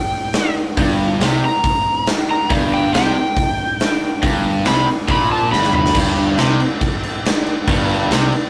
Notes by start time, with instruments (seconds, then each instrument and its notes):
Already playing: electric slide guitar G5
0.33 snare, open hi-hat
0.77 picked electric bass G1, overdriven electric guitar G2, kick, open hi-hat
1.20 picked electric bass C2, overdriven electric guitar C3, snare, open hi-hat
1.45 electric slide guitar A#5
1.64 kick, open hi-hat
2.06 snare, open hi-hat
2.31 electric slide guitar A#5
2.50 picked electric bass G1, overdriven electric guitar G2, kick, open hi-hat
2.74 electric slide guitar G5
2.94 picked electric bass C2, overdriven electric guitar C3, electric slide guitar G5, snare, open hi-hat
3.37 kick, open hi-hat
3.80 snare, open hi-hat
4.23 picked electric bass G1, overdriven electric guitar G2, kick, open hi-hat
4.65 picked electric bass C2, overdriven electric guitar C3, electric slide guitar B5, snare, open hi-hat
5.08 picked electric bass A#1, overdriven electric guitar A#2, electric slide guitar B5, kick, open hi-hat
5.32 electric slide guitar A5
5.51 picked electric bass G1, overdriven electric guitar G2, electric slide guitar B5, snare
5.63 snare
5.73 electric slide guitar B5, mid tom
5.86 snare
5.95 picked electric bass G1, overdriven electric guitar G2, kick, crash
6.16 crash
6.38 picked electric bass C2, overdriven electric guitar C3, snare, crash
6.60 crash
6.81 kick, crash
7.03 crash
7.25 snare, crash
7.46 crash
7.68 picked electric bass G1, overdriven electric guitar G2, kick, crash
7.89 crash
8.10 picked electric bass C2, overdriven electric guitar C3, snare, crash
8.32 crash